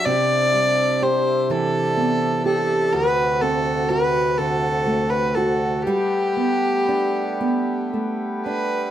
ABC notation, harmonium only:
X:1
M:6/8
L:1/8
Q:3/8=41
K:G
V:1 name="Harmonium"
[C,DE]6 | [D,,F]6 | [A,B,G]6 |]